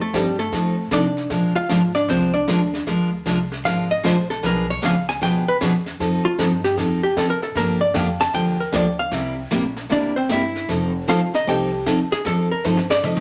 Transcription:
Already playing: F2
0.01 A3 A4
0.13 G2 F3 G3 C4 D#4 G4 A4, kick, snare, hi-hat pedal
0.39 A3 A4, snare
0.52 A2 F3 C4 D#4 A4, brush sweep, kick, snare
0.91 C3 F3 C4 D4 D#4 A4 D5, kick, snare, hi-hat pedal
1.17 snare
1.30 A#2 F3 G#3 D4 F4 A#4, brush sweep, kick, snare
1.56 F4 F5, muted upright bass stroke
1.69 G#2 F3 G#3 D4 F4 A#4, kick, snare, hi-hat pedal
1.95 D4 D5, snare
2.08 C2 F3 G#3 C4 D4 F4 A#4 C5, brush sweep, kick, snare
2.34 D4 D5
2.47 D#2 F3 G#3 D4 F4 A#4, kick, snare, hi-hat pedal
2.74 snare
2.87 D2 F3 G#3 D4 F4 A#4, brush sweep, kick, snare
3.26 C2 F3 G#3 D4 F4 A#4, kick, snare, hi-hat pedal
3.52 snare
3.65 G#1 F3 G#3 D4 F4 A#4 F5, brush sweep, kick, snare
3.91 D#5
4.03 A#1 F3 G#3 D4 F4 A#4 C5, kick, snare, hi-hat pedal
4.30 A4, snare
4.43 B1 B2 F3 B3 D4 G#4 A#4 B4, brush sweep, kick, snare
4.70 C#5
4.82 C#2 B2 F3 B3 D4 G#4 B4 F5, kick, snare, hi-hat pedal
5.09 G#5, snare
5.21 D2 B2 F3 B3 D4 G#4 B4 G5, brush sweep, kick, snare
5.48 B4
5.61 E2 B2 F3 B3 D4 G#4 B4, kick, snare, hi-hat pedal
5.86 snare
6.00 F2 F3 C4 D#4 A4, brush sweep, kick, snare
6.24 F4, muted upright bass stroke
6.38 G2 F3 C4 D#4 A4, kick, snare, hi-hat pedal
6.64 G4, snare
6.77 F2 F3 C4 D#4 A4, brush sweep, kick, snare
7.03 G4
7.17 A2 F3 C4 D#4 A4, kick, snare, hi-hat pedal
7.30 A#4
7.42 A4, snare
7.55 G2 D3 F3 A#3 D4 G4 A#4, brush sweep, kick, snare
7.81 D5
7.94 F2 D3 F3 A#3 D4 G4 F5, kick, snare, hi-hat pedal
8.20 A5, snare
8.34 D#2 D3 F3 A#3 D4 G4 G5, brush sweep, kick, snare
8.60 A#4
8.72 D2 D3 F3 A#3 D4 G4 D5, kick, snare, hi-hat pedal
8.99 F5
9.11 C2 C3 G3 A#3 E4 G4 E5, brush sweep, kick, snare
9.51 A#1 C3 G3 A#3 E4 G4, kick, snare, hi-hat pedal
9.77 snare
9.89 A1 C3 G3 A#3 D4 E4 G4 D5, brush sweep, kick, snare
10.16 C4 C5
10.29 G1 C3 G3 A#3 E4 G4 E5, kick, snare, hi-hat pedal
10.55 snare
10.68 F1 F3 C4 D#4 A4, brush sweep, kick, snare
11.08 A1 F3 C4 D#4 F4 A4 F5, kick, snare, hi-hat pedal
11.34 D#4 D#5, snare
11.47 C2 F3 C4 D#4 G4 A4 G5, brush sweep, kick, snare
11.86 D#2 F3 C4 D#4 A4, kick, snare, hi-hat pedal
12.11 G#4, muted upright bass stroke, snare
12.25 F2 F3 C4 D#4 A4, brush sweep, kick, snare
12.51 A#4, muted upright bass stroke
12.64 G2 F3 C4 D#4 A4 C5, snare, hi-hat pedal
12.77 snare
12.90 D5, snare
13.03 A2 F3 C4 D#4 A4 D#5, mid tom
13.17 mid tom

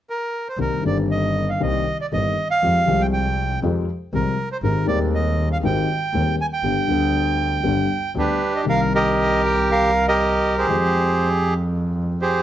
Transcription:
0.10 A#4
0.48 C5
0.57 C2 C3 D#3 A#3 C4 G4 A#4
0.83 G1 G2 D#3 A#3 C4 D5
0.87 G4
1.11 D#5
1.49 F5
1.60 C2 C3 D#3 A#3 C4 G4 D#5
2.01 D5
2.12 G1 G2 D#3 A#3 C4 G4 D#5
2.51 F5
2.62 F2 F3 G#3 C4 G4
2.86 C2 C3 F3 G#3 C4 G4
3.01 G5
3.13 G5
3.62 F2 F3 G#3 C4 G4
4.12 C2 C3 F3 G#3 C4 G4 A#4
4.52 C5
4.62 G#1 G#2 D#3 G#3 C4 G4 A#4
4.85 D#1 D#2 D#3 G#3 C4 G4 D5
5.15 D#5
5.53 F5
5.62 G#1 G#2 D#3 G#3 C4 G4 G5
6.13 D#1 D#2 D#3 G#3 C4 G4
6.41 G#5
6.53 G5
6.63 G1 G2 D3 G3 B3 G4
6.87 D2 D3 G3 B3
6.91 G4
7.64 G1 G2 D3 G3 B3 G4
8.15 D2 D3 G3 B3 D4 G4
8.19 B4
8.56 D#5
8.64 C2 C3 D#3 A#3 C4
8.68 G4 A#4 F5
8.94 G4 A#4 D#5
9.46 G5
9.71 A#4 F5
10.08 G4 A#4 D#5
10.58 G4 G#4 C5
10.67 F2 F3 G#3 C4
10.71 G5
12.21 G4 G#4 C5

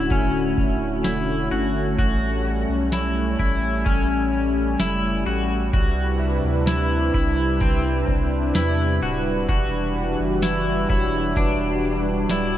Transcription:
Already playing: D1 D3 A3 C#4 E4 F#4
0.10 C#4, kick, closed hi-hat
0.58 D1, kick
1.04 E1 E4, snare, closed hi-hat
1.51 G1 F#4
1.98 A1 G3 F#4, kick, closed hi-hat
2.69 B1
2.92 E4, snare, closed hi-hat
3.39 A1 E4, kick
3.86 A1 C#4, kick, closed hi-hat
4.80 F#1 E4, snare, closed hi-hat
5.26 A1 F#4
5.73 C2 C3 D4 E4 F#4 B4, kick, closed hi-hat
6.19 E5
6.44 D2
6.67 E4, snare, closed hi-hat
7.14 C2 E4, kick
7.60 C4, kick, closed hi-hat
8.08 C2, kick
8.55 E2 E4, snare, closed hi-hat
9.02 D1 F#4
9.48 E1 E3 G3 F#4, kick, closed hi-hat
10.19 F#1
10.42 E4, snare, closed hi-hat
10.89 E1 E4 C#5, kick
11.18 E5
11.36 E1 D4, kick, closed hi-hat
12.30 D1 E4 D5, snare, closed hi-hat

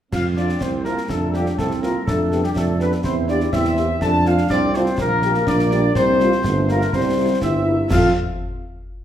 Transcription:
0.11 F2 C4 F4 F5, concert bass drum, snare, crash
0.36 A3 C4 D4 F4 D5, snare
0.49 snare
0.61 C2 C4 C5, concert bass drum, snare
0.84 A3 A#3 C4 F4 A#4, snare
0.97 snare
1.09 F2 A3 D4 A4, concert bass drum, snare
1.33 G3 A3 C4 F4 G4, snare
1.46 snare
1.57 C2 A3 C4 A4, concert bass drum, snare
1.71 snare
1.80 A3 A#3 C4 F4 A#4, snare
2.05 F2 A3 D4 A4, concert bass drum, snare
2.31 B3 D4 G4, snare
2.43 G3 G4, snare
2.55 F2 A3 A4, concert bass drum, snare
2.79 B3 D4 G4 B4, snare
2.92 snare
3.04 E2 C4 E4 C5, concert bass drum, snare
3.27 A#3 C4 D4 G4 D5, snare
3.40 snare
3.52 E2 C4 E4 E5, concert bass drum, snare
3.65 snare
3.77 A#3 C4 G4, snare
4.00 F2 D4 A4 A5, concert bass drum, snare, crash
4.25 A3 C4 F4 F5, snare
4.38 snare
4.49 C2 C4 D4 D5, concert bass drum, snare
4.74 A3 C4 F4 C5, snare
4.86 snare
4.97 A#1 A#3 A#4, concert bass drum, snare
5.22 G3 A#3 G4, snare
5.34 snare
5.47 A#1 D4 D5, concert bass drum, snare
5.59 snare
5.71 G3 A#3 G4, snare
5.95 C2 C4 C5, concert bass drum, snare
6.20 G3 A#3 F4, snare
6.32 snare
6.44 G1 A3, concert bass drum, snare
6.69 G3 A#3 F4 A#4, snare
6.81 snare
6.93 C2 G3 C4 C5, concert bass drum, snare
7.17 G3 A#3 E4
7.42 G1 C4 E4 E5, concert bass drum, snare
7.66 G3 A#3 E4
7.90 F2 C3 F3 A3 C4 F4 A4 F5, concert bass drum, snare, crash

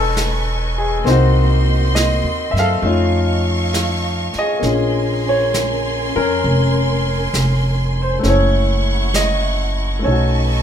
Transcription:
Already playing: E1 B3 C#4 D#4 A4 B4 D#5 G#5 C#6
0.17 snare, hi-hat pedal
0.78 G#4
1.04 C2 A#3 C4 D#4 F#4 C5 C6, brush sweep, snare
1.10 F#4
1.95 D#5, snare, hi-hat pedal
2.23 D#2
2.51 F#2 E5
2.56 A4 F5, snare
2.82 F2 A3 C#4 D#4 F5 C#6, brush sweep
2.87 F4
3.74 snare, hi-hat pedal
4.33 muted upright bass stroke, snare
4.39 G#4 D#5
4.59 A#1 A#3 C#4 G#5, brush sweep, snare
4.64 C#4 F4 A#4 C6
4.70 G#4
5.29 C#5
5.54 snare, hi-hat pedal
6.16 F2 C#4 A#4
6.44 F1, brush sweep
7.33 F1, snare, hi-hat pedal
8.02 C5
8.19 A3 C#4
8.23 F#1 E4 F#5 C#6, brush sweep, snare
8.28 A4 C#5
9.14 D#5, snare, hi-hat pedal
9.99 A3 C#4 B4 D#5 A5
10.03 B1 D#4 A4 C#5 C#6, brush sweep
10.11 F#4

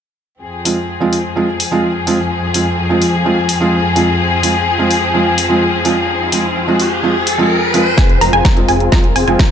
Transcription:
0.42 F2 F3 C4 G#4
0.65 F3 G#3 C4 F4, open hi-hat
1.00 F3 G#3 C4 F4
1.13 open hi-hat
1.36 F3 G#3 C4 F4
1.60 open hi-hat
1.71 F3 G#3 C4 F4
2.07 F3 G#3 C4 F4, open hi-hat
2.54 F3 G#3 C4 F4, open hi-hat
2.89 F3 G#3 C4 F4
3.02 open hi-hat
3.25 F3 G#3 C4 F4
3.49 open hi-hat
3.60 F3 G#3 C4 F4
3.95 F3 G#3 C4 F4, open hi-hat
4.20 riser
4.43 F3 G#3 C4 F4, open hi-hat
4.78 F3 G#3 C4 F4
4.91 open hi-hat
5.14 F3 G#3 C4 F4
5.38 open hi-hat
5.49 F3 G#3 C4 F4
5.84 F3 G#3 C4 F4, open hi-hat
6.32 F3 G#3 C4 F4, open hi-hat
6.67 F3 G#3 C4 F4
6.80 open hi-hat
7.03 F3 G#3 C4 F4
7.27 open hi-hat
7.38 F3 G#3 C4 F4
7.74 F3 G#3 C4 F4, open hi-hat
7.98 F1 G#3 C4 F4 G#4 G#5, kick, snare, closed hi-hat
8.10 closed hi-hat
8.21 F1 F3 G#3 C4 F4 A#4 A#5, open hi-hat
8.33 F1 C4 F4 G#4 G#5, closed hi-hat
8.45 F1 C4 F4 A#4 A#5, kick, snare, closed hi-hat
8.56 F3 G#3 C4 F4, closed hi-hat
8.68 F1 C4 F4 G#4 G#5, open hi-hat
8.80 closed hi-hat
8.92 F1 F3 G#3 C4 F4 A#4 A#5, kick, snare, closed hi-hat
9.04 closed hi-hat
9.16 F1 C4 F4 G#4 G#5, open hi-hat
9.27 F1 F3 G#3 C4 F4 G#4 G#5, closed hi-hat
9.39 F1 C4 F4 A#4 A#5, kick, snare, closed hi-hat

